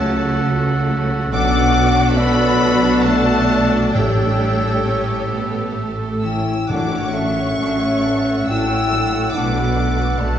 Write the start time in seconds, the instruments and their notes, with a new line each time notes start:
Already playing: double bass section C#2, cello section C#3, viola section F#3 A3, french horn section A3, harp A3 C#4 A4, violin section F#4 A4 A5, clarinet A4, flute C#5, cor anglais F#5
0.05 harp F#4
0.46 harp C#4
0.89 harp A3
1.32 double bass section B1, cello section B2, harp B2, viola section F#3 D4, french horn section D4, violin section F#4 A4 D6, clarinet A4, flute F#5, cor anglais F#5
1.75 harp F#4
2.17 harp A3, french horn section B3, clarinet A4, flute D5, cor anglais F#5, violin section B5
2.60 harp B3
3.04 harp A3, french horn section A3, clarinet A4, flute D5, cor anglais F#5, violin section A5
3.50 harp F#3
3.93 double bass section A1, cello section A2, harp A2, timpani A2, french horn section G3, viola section A3, violin section G4 G5, clarinet A4, flute C#5, cor anglais E5
4.40 harp A4
4.86 harp A3, viola section C#4
5.32 harp B3, viola section B3
5.78 harp A3, viola section A3
6.23 harp E3, viola section C#4, french horn section E4, flute G5, violin section E6
6.67 double bass section A1, cello section A2, harp A2, timpani A2, viola section F#3 D4, violin section C#4 A4 D6, french horn section D4, clarinet A4, cor anglais F#5, flute F#5
6.92 viola section A3 C#4, violin section F#4 C#5
7.13 viola section F#3 D4, violin section C#4 A4 C#6, french horn section C#4, flute E5
7.36 viola section A3 C#4, violin section F#4 C#5
7.58 double bass section A1, cello section A2, viola section F#3 D4, harp A3, violin section C#4 A4
7.81 viola section A3 C#4, violin section F#4 C#5
8.03 viola section F#3 D4, harp B3, violin section C#4 A4
8.25 viola section A3 C#4, violin section F#4 C#5
8.46 double bass section A1, cello section A2, viola section F#3 D4, harp A3, violin section C#4 A4 E6, french horn section E4, flute G5
8.69 viola section A3 C#4, violin section F#4 C#5
8.89 harp F#3, viola section F#3 D4, violin section C#4 A4
9.12 viola section A3 C#4, violin section F#4 C#5
9.34 double bass section B1, harp B2, cello section B2, viola section A3 B3, violin section D4 A4 D6, french horn section D4, flute F#5
9.56 viola section F#3 A3, violin section F#4 B4
9.77 viola section A3 B3, violin section D4 A4, harp F#4
9.98 viola section F#3 A3, violin section F#4 B4
10.18 double bass section B1, cello section B2, harp A3, french horn section A3, viola section A3 B3, violin section D4 A4 A5, flute D5